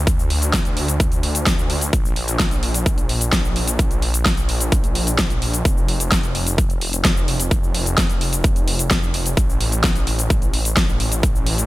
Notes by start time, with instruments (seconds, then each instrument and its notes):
Already playing: detuned saw bass D2
0.07 kick, closed hi-hat, shaker
0.19 shaker
0.30 open hi-hat
0.42 closed hi-hat, shaker
0.53 kick, snare, closed hi-hat, shaker
0.65 closed hi-hat, shaker
0.77 open hi-hat
0.88 closed hi-hat, shaker
1.00 kick, closed hi-hat, shaker
1.12 closed hi-hat, shaker
1.23 open hi-hat
1.35 closed hi-hat, shaker
1.46 kick, snare, closed hi-hat, shaker
1.59 shaker
1.70 open hi-hat
1.81 closed hi-hat, shaker
1.93 detuned saw bass A#1, kick, closed hi-hat, shaker
2.05 shaker
2.16 open hi-hat
2.28 closed hi-hat, shaker
2.40 kick, snare, closed hi-hat, shaker
2.51 closed hi-hat, shaker
2.63 open hi-hat
2.74 closed hi-hat, shaker
2.86 kick, closed hi-hat, shaker
2.98 closed hi-hat, shaker
3.09 open hi-hat
3.21 closed hi-hat, shaker
3.33 kick, snare, closed hi-hat, shaker
3.45 shaker
3.56 open hi-hat
3.68 closed hi-hat, shaker
3.79 kick, closed hi-hat, shaker
3.91 closed hi-hat, shaker
4.02 open hi-hat
4.14 closed hi-hat, shaker
4.26 kick, snare, closed hi-hat, shaker
4.37 closed hi-hat, shaker
4.49 open hi-hat
4.60 closed hi-hat, shaker
4.72 kick, closed hi-hat, shaker
4.84 closed hi-hat, shaker
4.95 open hi-hat
5.07 closed hi-hat, shaker
5.19 kick, snare, closed hi-hat, shaker
5.30 closed hi-hat, shaker
5.42 open hi-hat
5.54 closed hi-hat, shaker
5.65 detuned saw bass F1, kick, closed hi-hat, shaker
5.78 shaker
5.88 open hi-hat
6.00 closed hi-hat, shaker
6.12 kick, snare, closed hi-hat, shaker
6.23 closed hi-hat, shaker
6.35 open hi-hat
6.47 closed hi-hat, shaker
6.58 kick, closed hi-hat, shaker
6.70 closed hi-hat, shaker
6.81 open hi-hat
6.93 closed hi-hat, shaker
7.05 kick, snare, closed hi-hat, shaker
7.17 shaker
7.28 open hi-hat
7.40 closed hi-hat, shaker
7.51 kick, closed hi-hat, shaker
7.64 shaker
7.75 open hi-hat
7.86 closed hi-hat, shaker
7.98 kick, snare, closed hi-hat, shaker
8.09 closed hi-hat, shaker
8.21 open hi-hat
8.33 closed hi-hat, shaker
8.44 kick, closed hi-hat, shaker
8.56 closed hi-hat, shaker
8.68 open hi-hat
8.79 closed hi-hat, shaker
8.91 kick, snare, closed hi-hat, shaker
9.03 shaker
9.14 open hi-hat
9.26 closed hi-hat, shaker
9.37 detuned saw bass A1, kick, closed hi-hat, shaker
9.50 shaker
9.61 open hi-hat
9.72 closed hi-hat, shaker
9.84 kick, snare, closed hi-hat, shaker
9.95 closed hi-hat, shaker
10.07 open hi-hat
10.19 closed hi-hat, shaker
10.30 kick, closed hi-hat, shaker
10.42 closed hi-hat, shaker
10.54 open hi-hat
10.65 closed hi-hat, shaker
10.77 kick, snare, closed hi-hat, shaker
10.89 shaker
11.00 open hi-hat
11.12 closed hi-hat, shaker
11.23 kick, closed hi-hat, shaker
11.36 shaker
11.46 open hi-hat
11.58 closed hi-hat, shaker